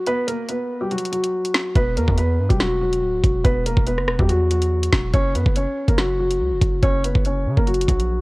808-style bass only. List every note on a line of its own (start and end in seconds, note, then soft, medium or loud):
1.76 1.98 E1 loud
1.97 2.07 E2 loud
2.08 2.40 E2 loud
2.39 2.50 G2 loud
2.50 3.04 E1 loud
3.02 3.22 D1 loud
3.24 3.44 E1 loud
3.45 3.76 E1 loud
3.77 4.00 E1 loud
3.98 4.10 F#1 loud
4.08 4.19 E1 loud
4.19 4.90 E2 loud
4.93 5.13 E1 loud
5.14 5.36 F#1 loud
5.35 5.45 F#2 loud
5.46 5.66 F#1 loud
5.88 6.42 F#1 loud
6.40 6.53 C#2 loud
6.52 6.61 F#1 loud
6.62 6.82 F#1 loud
6.83 7.14 F#1 loud
7.15 7.47 F#1 loud
7.46 7.57 C#3 loud
7.57 7.87 F#1 loud
7.88 8.21 A#1 loud